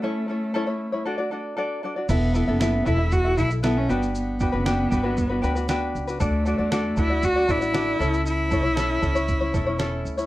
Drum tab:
CC |----------------|x---------------|----------------|----------------|
SH |----------------|x-x-x-x-x-xxx-xx|x-x-x-x-x-xxx-xx|x-x-x-x-x-xxx-xx|
SD |----------------|----o-------o---|----o-------o---|----o-------o---|
BD |----------------|o-----o-o-o-----|--o---o-o-------|o-----o-o-o-----|

CC |----------------|
SH |x-x-x-xxx-x-x-xx|
SD |----o--o----o---|
BD |--o---o-o-o-----|